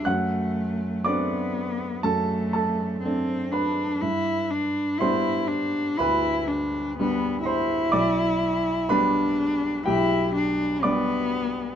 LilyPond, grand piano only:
<<
  \new Staff \with { instrumentName = "Grand piano" } { \time 4/4 \key g \major \tempo 4 = 61 <fis'' fis'''>4 <d'' d'''>4 <a' a''>8 <a' a''>4 <b' b''>8~ | <b' b''>4 <c'' c'''>4 <b' b''>4. <c'' c'''>8 | <d'' d'''>4 <b' b''>4 <g' g''>8 r8 <d'' d'''>4 | }
  \new Staff \with { instrumentName = "Grand piano" } { \time 4/4 \key g \major fis,4 <a c' d'>4 fis,4 <a c' d'>4 | g,4 <g b d'>4 d,4 <g b d'>4 | b,,4 <g b d'>4 b,,4 <g b d'>4 | }
>>